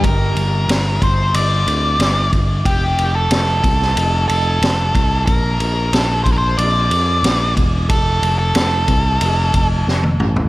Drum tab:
RD |x-x-x-x-x-x-x-x-|x-x-x-x-x-x-x-x-|x-x-x-x-x-x-x-x-|x-x-x-x-x-x-----|
SD |----o-------o---|----o--o----o---|----o-------o---|----o-------o---|
T1 |----------------|----------------|----------------|-------------o--|
T2 |----------------|----------------|----------------|--------------o-|
FT |----------------|----------------|----------------|---------------o|
BD |o-----o-------o-|o-----o-------o-|o-----o-------o-|o-----o---o-----|